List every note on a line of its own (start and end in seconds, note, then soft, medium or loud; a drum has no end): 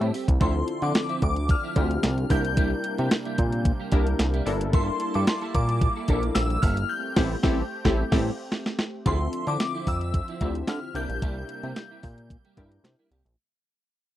0.00 0.11 A2 loud
0.00 0.13 G3 medium
0.00 0.39 A3 medium
0.00 2.26 C4 medium
0.00 0.13 C4 medium
0.00 0.15 E4 medium
0.00 0.10 G4 medium
0.00 0.39 G4 medium
0.00 0.10 A4 medium
0.00 closed hi-hat soft
0.14 0.27 G3 medium
0.14 0.28 C4 medium
0.14 0.28 G4 medium
0.14 open hi-hat medium
0.28 0.39 C2 medium
0.28 muted clean electric guitar stroke soft
0.28 kick loud
0.28 closed hi-hat medium
0.40 0.63 D2 loud
0.40 2.29 D3 medium
0.40 0.58 F3 loud
0.40 2.29 F3 medium
0.40 1.08 C4 medium
0.40 0.55 C4 loud
0.40 4.43 D4 medium
0.40 1.08 E4 medium
0.40 0.54 E4 medium
0.40 1.08 F4 medium
0.40 1.08 A4 medium
0.40 0.80 C6 medium
0.40 kick loud
0.40 closed hi-hat medium
0.55 muted clean electric guitar stroke soft
0.68 muted clean electric guitar stroke soft
0.68 closed hi-hat medium
0.82 0.93 D3 medium
0.82 0.94 F3 soft
0.82 0.94 C4 medium
0.82 0.94 E4 medium
0.82 1.20 D6 medium
0.82 closed hi-hat soft
0.95 muted clean electric guitar stroke soft
0.95 snare loud
0.95 closed hi-hat medium
1.09 1.20 F3 medium
1.09 1.21 C4 medium
1.09 1.21 E4 medium
1.09 closed hi-hat soft
1.22 1.56 D2 medium
1.22 1.51 D6 medium
1.22 muted clean electric guitar stroke soft
1.22 kick loud
1.22 closed hi-hat medium
1.36 muted clean electric guitar stroke soft
1.36 closed hi-hat medium
1.49 2.33 F6 medium
1.49 muted clean electric guitar stroke soft
1.49 kick loud
1.49 closed hi-hat medium
1.63 1.75 F3 medium
1.63 1.75 C4 medium
1.63 1.75 E4 medium
1.76 1.98 D2 loud
1.76 1.93 F3 medium
1.76 2.26 C4 medium
1.76 1.90 C4 medium
1.76 2.26 E4 medium
1.76 1.89 E4 medium
1.76 2.27 F4 medium
1.76 2.27 G4 medium
1.76 kick medium
1.76 closed hi-hat medium
1.91 muted clean electric guitar stroke medium
1.91 closed hi-hat medium
2.03 2.25 C2 loud
2.03 snare loud
2.03 closed hi-hat loud
2.17 muted clean electric guitar stroke soft
2.17 closed hi-hat soft
2.30 2.74 C2 medium
2.30 4.44 C3 medium
2.30 2.47 G3 medium
2.30 4.44 G3 medium
2.30 4.44 A#3 medium
2.30 2.44 A#3 medium
2.30 3.17 D4 medium
2.30 3.17 E4 medium
2.30 2.43 E4 medium
2.30 3.17 G4 medium
2.30 3.17 A#4 medium
2.30 4.43 G6 loud
2.30 kick medium
2.30 open hi-hat medium
2.45 muted clean electric guitar stroke soft
2.45 closed hi-hat medium
2.57 2.74 G3 loud
2.57 2.71 A#3 loud
2.57 2.70 E4 loud
2.57 kick loud
2.57 closed hi-hat medium
2.72 muted clean electric guitar stroke soft
2.84 muted clean electric guitar stroke soft
2.84 closed hi-hat medium
2.98 3.09 C3 medium
2.98 3.10 G3 medium
2.98 3.11 A#3 medium
2.98 3.10 E4 medium
2.98 closed hi-hat soft
3.11 snare loud
3.11 closed hi-hat medium
3.25 3.37 G3 medium
3.25 3.37 A#3 medium
3.25 3.38 E4 medium
3.25 closed hi-hat soft
3.38 3.72 A#2 medium
3.38 muted clean electric guitar stroke soft
3.38 kick loud
3.38 closed hi-hat medium
3.52 muted clean electric guitar stroke medium
3.52 closed hi-hat medium
3.65 muted clean electric guitar stroke soft
3.65 kick loud
3.65 closed hi-hat medium
3.80 3.91 G3 medium
3.80 3.92 A#3 medium
3.80 3.92 G4 medium
3.92 4.14 C2 loud
3.92 4.09 G3 loud
3.92 4.06 A#3 medium
3.92 4.43 D4 medium
3.92 4.43 E4 medium
3.92 4.06 E4 loud
3.92 4.43 G4 medium
3.92 4.43 A#4 loud
3.92 kick medium
3.92 closed hi-hat medium
4.07 muted clean electric guitar stroke soft
4.07 closed hi-hat medium
4.19 4.41 C2 medium
4.19 snare loud
4.19 closed hi-hat loud
4.34 4.50 G3 medium
4.34 4.46 A#3 medium
4.34 4.46 E4 medium
4.34 closed hi-hat soft
4.46 4.90 G1 medium
4.46 6.87 G3 medium
4.46 6.87 A#3 loud
4.46 5.33 D4 medium
4.46 5.33 E4 medium
4.46 6.87 E4 medium
4.46 5.33 A4 medium
4.46 5.33 A#4 medium
4.46 6.88 A5 medium
4.46 muted clean electric guitar stroke soft
4.46 open hi-hat medium
4.61 muted clean electric guitar stroke soft
4.61 closed hi-hat medium
4.73 4.90 A#3 medium
4.73 4.88 E4 loud
4.73 4.87 A4 loud
4.73 5.16 C6 medium
4.73 kick loud
4.73 closed hi-hat medium
4.88 muted clean electric guitar stroke soft
5.00 muted clean electric guitar stroke soft
5.00 closed hi-hat medium
5.14 5.25 G2 loud
5.14 5.26 A#3 soft
5.14 5.27 E4 medium
5.14 5.27 A4 medium
5.14 5.27 D6 medium
5.14 closed hi-hat soft
5.27 5.40 C6 medium
5.27 muted clean electric guitar stroke soft
5.27 snare loud
5.27 closed hi-hat medium
5.41 5.53 A#3 medium
5.41 5.54 E4 medium
5.41 5.54 A4 loud
5.41 closed hi-hat soft
5.55 5.88 A#2 medium
5.55 6.38 D6 medium
5.55 muted clean electric guitar stroke soft
5.55 kick medium
5.55 closed hi-hat medium
5.69 muted clean electric guitar stroke medium
5.69 closed hi-hat medium
5.81 muted clean electric guitar stroke soft
5.81 kick loud
5.81 closed hi-hat medium
5.96 6.07 A#3 soft
5.96 6.08 E4 medium
5.96 6.08 A4 medium
6.08 6.31 A#1 loud
6.08 6.26 A#3 medium
6.08 6.59 D4 medium
6.08 6.59 E4 medium
6.08 6.22 E4 loud
6.08 6.59 A4 medium
6.08 6.21 A4 loud
6.08 6.59 A#4 medium
6.08 kick medium
6.08 closed hi-hat medium
6.23 muted clean electric guitar stroke soft
6.23 closed hi-hat medium
6.35 6.58 A#1 loud
6.35 6.63 E6 loud
6.35 snare loud
6.35 closed hi-hat loud
6.50 muted clean electric guitar stroke soft
6.50 closed hi-hat soft
6.62 6.85 G1 loud
6.62 6.80 A#3 medium
6.62 6.77 E4 medium
6.62 6.76 A4 loud
6.62 6.90 F6 loud
6.62 kick loud
6.62 open hi-hat medium
6.77 muted clean electric guitar stroke soft
6.77 closed hi-hat medium
6.89 9.04 A3 loud
6.89 9.04 C4 medium
6.89 9.04 G4 loud
6.89 8.48 G6 medium
7.16 7.35 A1 loud
7.16 7.36 G3 loud
7.16 7.35 C4 loud
7.16 7.36 C4 loud
7.16 7.35 E4 loud
7.16 7.35 G4 loud
7.16 7.36 A4 loud
7.16 kick loud
7.16 snare loud
7.16 crash medium
7.43 7.62 A1 medium
7.43 7.63 G3 loud
7.43 7.62 C4 loud
7.43 7.63 C4 loud
7.43 7.62 E4 loud
7.43 7.62 G4 loud
7.43 7.62 A4 loud
7.43 kick loud
7.43 snare loud
7.84 8.03 A1 loud
7.84 8.04 G3 loud
7.84 8.03 C4 loud
7.84 8.03 E4 loud
7.84 8.03 G4 loud
7.84 8.03 A4 loud
7.84 kick loud
7.84 snare loud
8.12 8.30 A1 loud
8.12 8.31 G3 loud
8.12 8.30 C4 loud
8.12 8.30 E4 loud
8.12 8.30 G4 loud
8.12 8.30 A4 loud
8.12 kick loud
8.12 snare loud
8.12 crash medium
8.52 snare medium
8.66 snare medium
8.79 snare medium
9.06 9.28 D2 loud
9.06 10.93 D3 medium
9.06 10.93 F3 loud
9.06 9.23 F3 medium
9.06 10.93 C4 medium
9.06 9.73 C4 medium
9.06 9.20 C4 medium
9.06 9.73 E4 medium
9.06 9.19 E4 loud
9.06 9.73 F4 medium
9.06 9.13 G#4 medium
9.06 13.34 E5 medium
9.06 9.49 C6 medium
9.06 kick loud
9.06 closed hi-hat medium
9.13 9.77 A4 medium
9.20 muted clean electric guitar stroke medium
9.33 muted clean electric guitar stroke soft
9.33 closed hi-hat medium
9.47 9.57 D3 medium
9.47 9.59 F3 medium
9.47 9.60 C4 medium
9.47 9.59 E4 medium
9.47 9.85 D6 medium
9.47 closed hi-hat soft
9.60 muted clean electric guitar stroke soft
9.60 snare loud
9.60 closed hi-hat medium
9.75 9.86 F3 medium
9.75 9.87 C4 medium
9.75 9.87 E4 medium
9.87 10.20 F2 medium
9.87 10.38 E6 medium
9.87 muted clean electric guitar stroke soft
9.87 kick medium
9.87 open hi-hat medium
10.01 muted clean electric guitar stroke soft
10.01 closed hi-hat soft
10.14 muted clean electric guitar stroke medium
10.14 kick loud
10.14 closed hi-hat medium
10.28 10.40 F3 medium
10.28 10.41 C4 medium
10.28 10.41 E4 medium
10.28 closed hi-hat soft
10.41 10.63 D2 loud
10.41 10.58 F3 medium
10.41 10.91 C4 medium
10.41 10.56 C4 medium
10.41 10.92 E4 medium
10.41 10.55 E4 medium
10.41 10.92 F4 medium
10.41 10.92 G4 medium
10.41 kick medium
10.41 closed hi-hat medium
10.55 muted clean electric guitar stroke soft
10.55 closed hi-hat soft
10.68 10.79 D3 loud
10.68 10.96 F6 medium
10.68 snare loud
10.68 closed hi-hat loud
10.83 muted clean electric guitar stroke soft
10.94 11.06 C2 medium
10.94 13.36 C3 medium
10.94 13.36 G3 medium
10.94 11.12 G3 loud
10.94 13.36 A#3 medium
10.94 11.09 A#3 loud
10.94 11.82 D4 medium
10.94 11.82 E4 medium
10.94 11.09 E4 loud
10.94 11.82 G4 medium
10.94 11.82 A#4 medium
10.94 12.81 G6 loud
10.94 closed hi-hat medium
11.09 11.19 A#1 medium
11.09 muted clean electric guitar stroke soft
11.09 closed hi-hat medium
11.22 11.44 C2 loud
11.22 11.39 G3 medium
11.22 11.36 A#3 loud
11.22 11.36 E4 loud
11.22 kick loud
11.22 closed hi-hat loud
11.37 muted clean electric guitar stroke medium
11.49 muted clean electric guitar stroke soft
11.49 closed hi-hat medium
11.63 11.74 C3 medium
11.63 11.75 G3 soft
11.63 11.76 A#3 medium
11.63 11.76 E4 medium
11.63 closed hi-hat soft
11.76 muted clean electric guitar stroke medium
11.76 snare loud
11.76 closed hi-hat medium
11.91 12.02 G3 medium
11.91 12.03 A#3 medium
11.91 12.03 E4 medium
12.03 12.37 A#2 medium
12.03 muted clean electric guitar stroke soft
12.03 kick medium
12.03 open hi-hat medium
12.18 muted clean electric guitar stroke soft
12.18 closed hi-hat medium
12.30 muted clean electric guitar stroke soft
12.30 kick loud
12.30 closed hi-hat medium
12.45 12.56 G3 medium
12.45 12.57 A#3 medium
12.45 12.57 G4 medium
12.45 closed hi-hat soft
12.57 12.79 G2 medium
12.57 12.74 G3 medium
12.57 12.71 A#3 medium
12.57 13.07 D4 medium
12.57 13.07 E4 medium
12.57 12.71 E4 loud
12.57 13.08 G4 medium
12.57 13.08 A#4 medium
12.57 kick medium
12.57 closed hi-hat medium
12.72 muted clean electric guitar stroke soft
12.72 closed hi-hat medium
12.84 12.95 C3 loud
12.84 snare loud
12.84 closed hi-hat loud
12.99 13.11 G3 medium
12.99 13.11 A#3 medium
12.99 13.13 E4 medium
13.11 13.23 C2 medium
13.11 13.25 G3 medium
13.11 13.25 A#3 medium
13.11 13.26 G4 medium
13.11 closed hi-hat medium
13.25 13.36 A#1 medium
13.25 muted clean electric guitar stroke soft
13.25 closed hi-hat medium